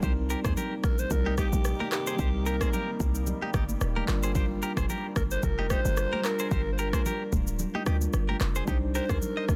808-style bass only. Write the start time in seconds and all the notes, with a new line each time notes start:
0.03 C2
0.45 D#2
0.84 A#1
1.11 C2
1.53 A#1
2.19 C2
3.00 C2
3.54 G1
3.81 D#1
4.08 G1
4.77 F1
5.16 G1
5.43 F1
5.85 G1
6.51 G1
7.33 D1
7.87 D2
8.14 G1
8.41 F1
8.68 C2
9.09 D2
9.49 C2